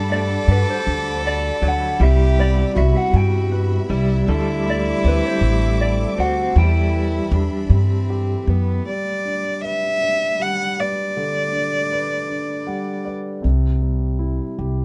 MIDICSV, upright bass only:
0, 0, Header, 1, 2, 480
1, 0, Start_track
1, 0, Key_signature, 1, "major"
1, 0, Tempo, 763359
1, 1258, Time_signature, 6, 3, 24, 8
1, 9337, End_track
2, 0, Start_track
2, 0, Title_t, "Upright bass"
2, 0, Program_c, 0, 32
2, 0, Note_on_c, 0, 43, 82
2, 215, Note_off_c, 0, 43, 0
2, 300, Note_on_c, 0, 43, 83
2, 399, Note_off_c, 0, 43, 0
2, 545, Note_on_c, 0, 38, 81
2, 937, Note_off_c, 0, 38, 0
2, 1017, Note_on_c, 0, 38, 68
2, 1215, Note_off_c, 0, 38, 0
2, 1256, Note_on_c, 0, 36, 87
2, 1650, Note_off_c, 0, 36, 0
2, 1737, Note_on_c, 0, 36, 89
2, 1835, Note_off_c, 0, 36, 0
2, 1971, Note_on_c, 0, 43, 93
2, 2365, Note_off_c, 0, 43, 0
2, 2451, Note_on_c, 0, 36, 77
2, 2648, Note_off_c, 0, 36, 0
2, 2692, Note_on_c, 0, 38, 82
2, 3085, Note_off_c, 0, 38, 0
2, 3172, Note_on_c, 0, 38, 87
2, 3269, Note_off_c, 0, 38, 0
2, 3404, Note_on_c, 0, 33, 86
2, 3800, Note_off_c, 0, 33, 0
2, 3888, Note_on_c, 0, 38, 71
2, 4086, Note_off_c, 0, 38, 0
2, 4123, Note_on_c, 0, 40, 91
2, 4521, Note_off_c, 0, 40, 0
2, 4599, Note_on_c, 0, 40, 94
2, 4703, Note_off_c, 0, 40, 0
2, 4840, Note_on_c, 0, 43, 84
2, 5241, Note_off_c, 0, 43, 0
2, 5329, Note_on_c, 0, 42, 80
2, 5529, Note_off_c, 0, 42, 0
2, 8453, Note_on_c, 0, 36, 65
2, 9046, Note_off_c, 0, 36, 0
2, 9172, Note_on_c, 0, 36, 55
2, 9337, Note_off_c, 0, 36, 0
2, 9337, End_track
0, 0, End_of_file